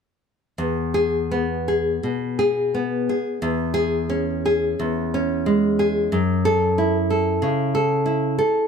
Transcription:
0.58 1.98 E2 medium
0.94 1.53 G#4 medium
1.31 2.38 B3 soft
1.68 2.38 G#4 soft
2.03 3.08 B2 soft
2.39 3.08 G#4 medium
2.74 3.42 B3 soft
3.09 3.43 G#4 soft
3.42 4.74 E2 medium
3.74 4.30 G#4 medium
4.10 5.11 C#4 soft
4.46 5.44 G#4 soft
4.79 6.07 E2 medium
5.14 6.12 C#4 soft
5.46 6.12 G#3 soft
5.79 6.11 G#4 medium
6.12 7.39 F#2 medium
6.45 6.96 A4 medium
6.78 7.76 E4 medium
7.10 7.73 A4 soft
7.42 8.39 C#3 medium
7.75 8.37 A4 medium
8.06 8.68 E4 medium
8.39 8.68 A4 medium

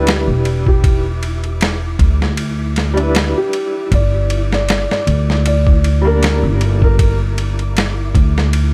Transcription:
0.00 0.29 D2 medium
0.00 2.90 G3 medium
0.00 2.92 D4 medium
0.00 2.93 E4 medium
0.00 8.74 E4 medium
0.00 0.59 G4 medium
0.00 2.95 B4 loud
0.00 8.74 D6 medium
0.07 snare loud
0.07 ride medium
0.28 1.96 E1 medium
0.45 ride medium
0.66 1.01 G4 medium
0.66 kick medium
0.84 kick medium
0.84 ride medium
1.23 ride medium
1.44 ride soft
1.61 snare loud
1.61 ride medium
1.99 3.32 D2 medium
1.99 kick medium
1.99 ride medium
2.22 snare medium
2.37 ride medium
2.76 snare soft
2.76 ride medium
2.94 3.88 G3 medium
2.94 3.89 D4 medium
2.94 ride soft
3.00 3.91 E4 medium
3.00 3.92 B4 loud
3.15 snare loud
3.15 ride medium
3.38 3.87 G4 medium
3.53 ride medium
3.92 4.85 G1 medium
3.92 4.46 D5 medium
3.92 kick loud
3.92 ride medium
4.30 ride medium
4.53 4.86 D5 medium
4.53 snare medium
4.69 snare loud
4.69 ride medium
4.91 5.41 D5 medium
4.91 snare medium
5.07 6.45 D2 medium
5.07 ride medium
5.30 snare soft
5.46 5.99 D5 medium
5.46 ride medium
5.67 kick medium
5.84 ride medium
6.02 8.74 G3 medium
6.02 8.74 A#3 medium
6.07 8.74 D4 medium
6.07 6.74 A#4 medium
6.11 8.74 A#4 loud
6.23 snare loud
6.23 ride medium
6.43 8.11 G1 medium
6.61 ride medium
6.82 7.17 A#4 medium
6.82 kick medium
6.99 kick loud
6.99 ride medium
7.38 ride medium
7.59 ride soft
7.77 snare loud
7.77 ride medium
8.15 8.74 D2 medium
8.15 kick medium
8.15 ride medium
8.38 snare medium
8.53 ride medium

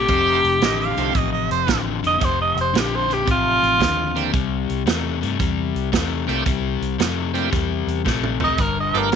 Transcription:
0.00 1.30 G4 medium
0.08 0.43 F1 loud
0.08 0.58 F2 medium
0.08 0.58 C3 medium
0.08 0.41 A3 medium
0.08 0.41 C4 medium
0.08 0.41 D#4 soft
0.08 0.41 F4 medium
0.08 0.41 G4 medium
0.08 kick loud
0.08 closed hi-hat medium
0.44 0.60 F1 medium
0.44 closed hi-hat medium
0.61 0.96 A1 medium
0.61 0.94 F2 medium
0.61 0.94 D3 medium
0.61 0.80 D#5 medium
0.61 snare loud
0.61 closed hi-hat medium
0.81 1.18 F5 medium
0.97 1.14 C2 medium
0.97 1.12 F2 medium
0.97 1.13 D3 medium
0.97 1.13 A3 medium
0.97 1.13 C4 medium
0.97 1.13 D#4 medium
0.97 1.13 F4 medium
0.97 1.14 G4 loud
0.97 closed hi-hat medium
1.14 1.49 A1 loud
1.14 1.64 F2 medium
1.14 1.64 C3 medium
1.14 kick loud
1.14 closed hi-hat medium
1.18 1.31 D#5 medium
1.32 1.49 D#5 medium
1.50 1.67 F1 medium
1.50 1.79 C5 medium
1.50 closed hi-hat medium
1.67 2.02 A1 medium
1.67 1.99 F2 medium
1.67 2.00 D3 medium
1.67 kick medium
1.67 snare loud
1.67 closed hi-hat medium
2.03 2.20 F1 medium
2.03 2.18 F2 medium
2.03 2.19 D3 medium
2.03 2.26 D#5 medium
2.03 closed hi-hat medium
2.20 2.56 F1 medium
2.20 2.70 F2 medium
2.20 2.70 C3 medium
2.20 kick loud
2.20 closed hi-hat medium
2.25 2.40 C5 medium
2.42 2.57 D#5 medium
2.56 2.73 F1 medium
2.56 closed hi-hat medium
2.61 2.80 C5 medium
2.73 3.25 A#1 medium
2.73 3.06 F2 medium
2.73 3.06 D3 loud
2.73 snare loud
2.73 closed hi-hat medium
2.78 2.97 G4 medium
2.95 3.15 C5 medium
3.08 3.24 F2 medium
3.08 3.25 D3 medium
3.08 closed hi-hat medium
3.13 3.29 G4 medium
3.26 3.62 A1 medium
3.26 3.76 F2 medium
3.26 3.76 C3 medium
3.26 kick loud
3.26 closed hi-hat medium
3.31 4.32 F4 loud
3.63 3.79 A1 medium
3.63 closed hi-hat medium
3.79 4.31 D#2 medium
3.79 4.11 F2 medium
3.79 4.12 D3 medium
3.79 kick medium
3.79 snare loud
3.79 closed hi-hat medium
4.15 4.31 F2 medium
4.15 4.31 D3 medium
4.15 4.31 A#3 medium
4.15 4.31 C4 medium
4.15 4.32 D4 medium
4.15 4.32 E4 medium
4.15 4.32 G4 medium
4.15 closed hi-hat medium
4.32 4.68 C2 medium
4.32 4.82 C3 medium
4.32 4.82 G3 medium
4.32 kick loud
4.32 closed hi-hat medium
4.69 4.86 C2 medium
4.69 closed hi-hat medium
4.86 5.21 E2 medium
4.86 5.18 C3 medium
4.86 5.18 A3 medium
4.86 snare loud
4.86 closed hi-hat medium
5.21 5.39 G2 medium
5.21 5.37 C3 medium
5.21 5.37 A3 medium
5.21 closed hi-hat medium
5.39 5.74 E2 loud
5.39 5.89 C3 medium
5.39 5.89 G3 medium
5.39 kick loud
5.39 closed hi-hat medium
5.75 5.92 C2 medium
5.75 closed hi-hat medium
5.92 6.27 E2 medium
5.92 6.24 C3 medium
5.92 6.24 A3 medium
5.92 kick medium
5.92 snare loud
5.92 closed hi-hat medium
6.27 6.45 C2 medium
6.27 6.43 C3 medium
6.27 6.44 A3 medium
6.27 6.44 A#3 medium
6.27 6.44 C4 medium
6.27 6.44 D4 medium
6.27 6.44 E4 medium
6.27 6.44 G4 medium
6.27 closed hi-hat medium
6.45 6.80 C2 medium
6.45 6.95 C3 medium
6.45 6.95 G3 loud
6.45 kick loud
6.45 closed hi-hat medium
6.81 6.98 C2 medium
6.81 closed hi-hat medium
6.98 7.50 F2 medium
6.98 7.31 C3 medium
6.98 7.31 A3 loud
6.98 snare loud
6.98 closed hi-hat medium
7.34 7.49 C3 medium
7.34 7.50 A3 medium
7.34 7.50 A#3 medium
7.34 7.50 C4 medium
7.34 7.50 D4 medium
7.34 7.50 E4 medium
7.34 7.50 G4 medium
7.34 closed hi-hat medium
7.51 7.86 E2 medium
7.51 8.01 C3 medium
7.51 8.01 G3 medium
7.51 kick loud
7.51 snare soft
7.51 closed hi-hat medium
7.87 8.04 E2 medium
7.87 closed hi-hat medium
8.05 8.57 A#1 medium
8.05 8.37 C3 medium
8.05 8.37 A3 medium
8.05 kick medium
8.05 snare medium
8.24 mid tom medium
8.40 8.56 C3 medium
8.40 8.56 A3 medium
8.40 floor tom medium
8.44 8.63 D#5 medium
8.58 8.93 G1 medium
8.58 9.08 G2 medium
8.58 9.09 D3 medium
8.58 8.77 A#4 medium
8.58 kick loud
8.58 closed hi-hat medium
8.80 9.00 D#5 medium
8.94 9.11 G1 medium
8.94 9.10 A3 medium
8.94 9.10 B3 medium
8.94 9.10 D4 medium
8.94 9.10 F4 medium
8.94 9.10 G4 medium
8.94 closed hi-hat medium
8.98 9.15 A#4 medium
9.12 9.15 G2 medium
9.12 9.15 E3 loud
9.12 closed hi-hat medium

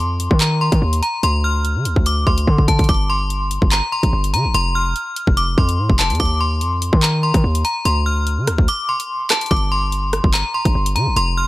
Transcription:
0.00 0.29 F2 loud
0.00 0.37 C6 medium
0.20 closed hi-hat medium
0.31 0.71 D#3 loud
0.31 kick medium
0.41 0.57 A#5 medium
0.41 clap loud
0.41 closed hi-hat medium
0.61 1.00 C6 medium
0.72 0.81 D#3 loud
0.72 kick loud
0.72 closed hi-hat medium
0.82 1.02 D#2 loud
0.93 closed hi-hat medium
1.03 1.19 A#5 medium
1.03 closed hi-hat medium
1.23 1.77 D2 loud
1.23 1.40 C6 loud
1.23 closed hi-hat medium
1.44 2.02 F6 medium
1.65 closed hi-hat medium
1.76 1.87 D3 loud
1.85 1.96 D2 loud
1.85 closed hi-hat medium
1.96 2.26 D2 loud
1.96 kick medium
2.06 2.23 D6 medium
2.06 closed hi-hat medium
2.27 2.47 D2 loud
2.27 2.66 C6 medium
2.27 kick medium
2.38 closed hi-hat medium
2.47 2.87 D3 loud
2.47 kick medium
2.58 kick medium
2.68 2.84 A5 medium
2.68 kick medium
2.68 closed hi-hat medium
2.79 kick medium
2.79 closed hi-hat medium
2.84 closed hi-hat medium
2.89 3.59 G1 loud
2.89 3.05 D6 loud
2.89 kick loud
2.89 closed hi-hat soft
2.94 closed hi-hat soft
3.10 3.68 C6 medium
3.30 closed hi-hat medium
3.51 closed hi-hat medium
3.62 3.82 G1 loud
3.62 kick medium
3.72 3.88 A#5 medium
3.72 clap loud
3.72 closed hi-hat medium
3.92 4.31 C6 medium
4.03 4.12 A#1 loud
4.03 kick loud
4.03 closed hi-hat medium
4.13 4.35 G1 loud
4.24 closed hi-hat medium
4.34 4.46 D3 medium
4.34 4.50 A#5 medium
4.34 closed hi-hat medium
4.45 4.54 G1 loud
4.54 4.94 F1 loud
4.54 4.71 C6 loud
4.54 closed hi-hat medium
4.75 5.34 F6 medium
4.96 closed hi-hat medium
5.16 closed hi-hat medium
5.27 5.57 F1 loud
5.27 kick medium
5.37 5.53 D6 medium
5.37 closed hi-hat medium
5.58 5.80 F2 loud
5.58 5.97 C6 medium
5.58 kick medium
5.69 closed hi-hat medium
5.79 5.89 A2 loud
5.90 6.12 F1 loud
5.90 kick medium
5.99 6.15 A5 medium
5.99 clap loud
5.99 closed hi-hat medium
6.10 6.19 F2 loud
6.10 closed hi-hat medium
6.15 closed hi-hat medium
6.20 6.63 D#2 loud
6.20 6.36 D6 loud
6.20 kick loud
6.20 closed hi-hat medium
6.25 closed hi-hat medium
6.41 6.99 C6 medium
6.61 6.91 F2 medium
6.61 closed hi-hat medium
6.82 closed hi-hat medium
6.93 7.33 D#3 loud
6.93 kick medium
7.03 7.19 A#5 medium
7.03 clap loud
7.03 closed hi-hat medium
7.23 7.62 C6 medium
7.34 7.43 D#3 loud
7.34 kick medium
7.34 closed hi-hat medium
7.44 7.64 D#2 loud
7.55 closed hi-hat medium
7.65 7.81 A#5 medium
7.65 closed hi-hat medium
7.85 8.39 D2 loud
7.85 8.02 C6 loud
7.85 closed hi-hat medium
8.06 8.64 F6 medium
8.27 closed hi-hat medium
8.38 8.49 D3 loud
8.47 8.58 D2 loud
8.47 cross-stick medium
8.47 closed hi-hat medium
8.58 8.68 D2 loud
8.58 kick medium
8.68 8.85 D6 medium
8.68 closed hi-hat medium
8.89 9.28 C6 medium
9.00 closed hi-hat medium
9.30 9.46 A5 medium
9.30 cross-stick medium
9.30 clap loud
9.30 closed hi-hat medium
9.41 closed hi-hat medium
9.46 closed hi-hat medium
9.51 10.21 G1 loud
9.51 9.67 D6 loud
9.51 kick loud
9.51 closed hi-hat soft
9.56 closed hi-hat soft
9.72 10.30 C6 medium
9.92 closed hi-hat medium
10.13 cross-stick medium
10.13 closed hi-hat medium
10.24 10.44 G1 loud
10.24 kick medium
10.34 10.50 A#5 medium
10.34 clap loud
10.34 closed hi-hat medium
10.54 10.93 C6 medium
10.65 10.75 A#1 loud
10.65 kick medium
10.65 closed hi-hat medium
10.75 10.97 G1 loud
10.86 closed hi-hat medium
10.96 11.08 D3 loud
10.96 11.12 A#5 medium
10.96 closed hi-hat medium
11.07 11.16 G1 loud
11.16 11.47 F1 loud
11.16 11.33 C6 loud
11.16 closed hi-hat medium
11.37 11.47 F6 medium

